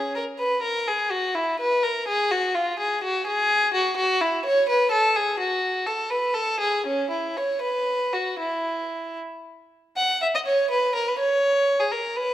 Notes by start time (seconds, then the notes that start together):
Already playing: C#4 G#4
0.16 A#4
0.39 B4
0.62 A#4
0.87 G#4
1.11 F#4
1.35 E4
1.60 B4
1.83 A#4
2.08 G#4
2.31 F#4
2.55 F4
2.79 G#4
3.04 F#4
3.27 G#4
3.74 F#4
3.97 F#4
4.21 E4
4.45 C#5
4.69 B4
4.91 A4
5.16 G#4
5.40 F#4
5.86 A4
6.10 B4
6.34 A4
6.60 G#4
6.86 C#4
7.10 E4
7.37 C#5
7.61 B4
8.13 F#4
8.40 E4
9.96 F#5
10.22 E5
10.35 D#5
10.46 C#5
10.70 B4
10.95 A#4
11.08 B4
11.19 C#5
11.80 G#4
11.91 A#4
12.16 B4